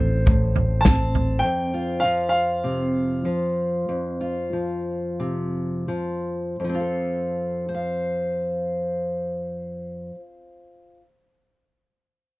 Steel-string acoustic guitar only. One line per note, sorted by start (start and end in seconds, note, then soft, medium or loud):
0.00 0.25 A2 medium
0.00 0.84 C4 medium
0.00 2.88 A4 medium
0.26 1.41 A2 medium
0.85 4.35 C4 medium
1.43 3.88 F2 medium
1.74 4.20 F4 medium
2.04 3.25 F3 medium
2.64 3.25 C3 medium
3.25 4.53 F3 medium
3.89 6.59 F2 medium
4.21 6.55 F4 soft
4.53 5.87 F3 soft
5.20 5.88 C3 medium
5.88 6.55 F3 soft
6.60 10.10 F2 soft
6.64 10.14 F3 soft
6.69 10.19 C4 soft
6.75 7.68 F4 soft
6.80 7.74 A4 soft
7.69 10.96 C5 medium
7.75 11.02 F5 medium